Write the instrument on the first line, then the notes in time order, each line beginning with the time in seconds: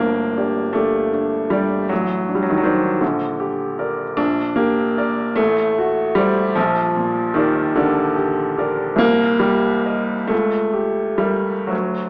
grand piano
Already playing: G1 D4
0.00 D2 A#3
0.37 D4 G4 D5
0.73 A3 D4 G4 D5
1.13 D4
1.50 G3 D4 G4 D5
1.89 A1 F#3
2.29 D4
2.35 G3
2.43 F#3
2.50 D#3
2.57 F#3
2.63 D#3 C5 D5
3.01 A#1 D3
3.40 G4
3.79 A#4 D5
4.17 A#1 D4
4.56 A#3 G4
4.98 A#4 D5
5.36 A1 A3
5.78 F#4
6.15 G3 C5 D5
6.55 A#1 F3
6.96 A#2
7.34 D#3 G4 A#4 D5
7.75 D3 G4 A#4 D5
8.16 G4
8.58 G4 A#4 D5
8.96 C2 A#3
9.39 G3 G4
9.86 A#4 D#5
10.27 C#2 A3
10.73 G4
11.18 G3 A#4 E5
11.67 D2 F#3